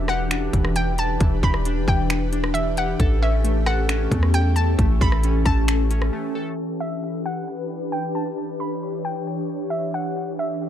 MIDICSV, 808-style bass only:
0, 0, Header, 1, 2, 480
1, 0, Start_track
1, 0, Tempo, 447761
1, 1292, Time_signature, 4, 2, 24, 8
1, 11463, End_track
2, 0, Start_track
2, 0, Title_t, "808-style bass"
2, 0, Program_c, 0, 38
2, 0, Note_on_c, 0, 28, 117
2, 529, Note_off_c, 0, 28, 0
2, 573, Note_on_c, 0, 28, 102
2, 1264, Note_off_c, 0, 28, 0
2, 1293, Note_on_c, 0, 28, 119
2, 1523, Note_off_c, 0, 28, 0
2, 1533, Note_on_c, 0, 28, 106
2, 1994, Note_off_c, 0, 28, 0
2, 2012, Note_on_c, 0, 28, 102
2, 3169, Note_off_c, 0, 28, 0
2, 3213, Note_on_c, 0, 33, 115
2, 4370, Note_off_c, 0, 33, 0
2, 4411, Note_on_c, 0, 40, 104
2, 5103, Note_off_c, 0, 40, 0
2, 5132, Note_on_c, 0, 33, 116
2, 5362, Note_off_c, 0, 33, 0
2, 5373, Note_on_c, 0, 33, 100
2, 5833, Note_off_c, 0, 33, 0
2, 5851, Note_on_c, 0, 33, 103
2, 6543, Note_off_c, 0, 33, 0
2, 11463, End_track
0, 0, End_of_file